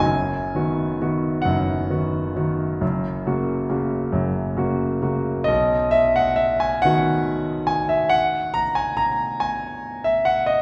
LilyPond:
<<
  \new Staff \with { instrumentName = "Grand piano" } { \time 12/8 \key b \major \tempo 4. = 45 gis''4. fis''2. r4. | dis''8 e''16 fis''16 e''16 gis''16 fis''4 gis''16 e''16 fis''8 ais''16 gis''16 ais''8 gis''8. e''16 fis''16 dis''16 | }
  \new Staff \with { instrumentName = "Grand piano" } { \clef bass \time 12/8 \key b \major <fis,, fis,>8 <dis b fis'>8 <dis b fis'>8 <fis,, fis,>8 <dis b fis'>8 <dis b fis'>8 <fis,, fis,>8 <cis ais fis'>8 <cis ais fis'>8 <fis,, fis,>8 <cis ais fis'>8 <cis ais fis'>8 | b,,4. <dis b fis'>1~ <dis b fis'>8 | }
>>